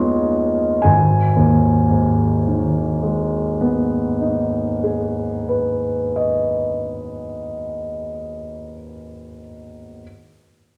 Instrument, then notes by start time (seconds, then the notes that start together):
grand piano
Already playing: G#3 B3 D#4 F4 D#5
0.82 G#1 G#5
1.36 D#2
1.90 G#2
2.47 D#3
3.03 G#3
3.61 B3
4.21 D#4
4.84 G#4
5.49 B4
6.16 D#5